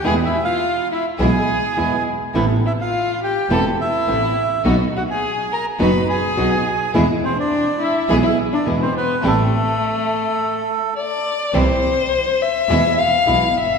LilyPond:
<<
  \new Staff \with { instrumentName = "Bandoneon" } { \time 4/4 \key e \phrygian \tempo 4 = 104 \tuplet 3/2 { gis''8 e''8 f''8~ } f''8 e''8 gis''4. r8 | r8 e''16 f''8. g''8 a''8 e''4. | r8 fis''16 gis''8. bes''8 b''8 gis''4. | r8 c''16 d''8. e''8 gis''16 e''8 d''8 c''16 b'8 |
a'2. r4 | \key c \major r1 | }
  \new Staff \with { instrumentName = "Violin" } { \time 4/4 \key e \phrygian \tuplet 3/2 { gis'8 e'8 f'8~ } f'8 e'8 gis'4. r8 | r8 e'16 f'8. g'8 a'8 e'4. | r8 fis'16 gis'8. bes'8 b'8 gis'4. | r8 c'16 d'8. e'8 gis'16 e'8 d'8 c'16 b8 |
a2. d''4 | \key c \major c''4. e''4 f''4 e''8 | }
  \new Staff \with { instrumentName = "String section" } { \time 4/4 \key e \phrygian <b e' gis'>8 r4. <b e' gis'>8 r8 <b e' gis'>8 r8 | <b c' a'>8 r4. <b c' a'>8 r8 <b c' a'>8 r8 | <b dis' fis'>8 r4. <b dis' fis'>8 r8 <b dis' fis'>8 r8 | <b e' gis'>8 r4. <b e' gis'>8 r8 <b e' gis'>8 r8 |
<c' g' a'>8 r2. r8 | \key c \major <c' e' g'>8 r4. <b e' gis'>8 r8 <b e' gis'>8 r8 | }
  \new Staff \with { instrumentName = "Nylon-string guitar" } { \clef bass \time 4/4 \key e \phrygian <b, e gis b e'>8 r4. <b, e gis b e'>8 r8 <b, e gis b e'>8 r8 | <c e b c' e'>8 r4. <c e b c' e'>8 r8 <c e b c' e'>8 r8 | <b, fis b dis' fis'>8 r4. <b, fis b dis' fis'>8 r8 <b, fis b dis' fis'>8 r8 | <b, e gis b e'>8 r4. <b, e gis b e'>8 r8 <b, e gis b e'>8 r8 |
<e g c' e'>8 r2. r8 | \key c \major <c e g c' e'>8 r4. <b, e gis b e'>8 r8 <b, e gis b e'>8 r8 | }
  \new Staff \with { instrumentName = "Double bass" } { \clef bass \time 4/4 \key e \phrygian e,8 r4. b,,8 r8 e,8 r8 | a,,8 r4. e,,8 r8 a,,8 r8 | b,,8 r4. fis,,8 r8 b,,8 r8 | e,8 r4. b,,8 r8 e,8 r8 |
a,,8 r2. r8 | \key c \major c,8 r4. e,8 r8 b,,8 g,,8 | }
>>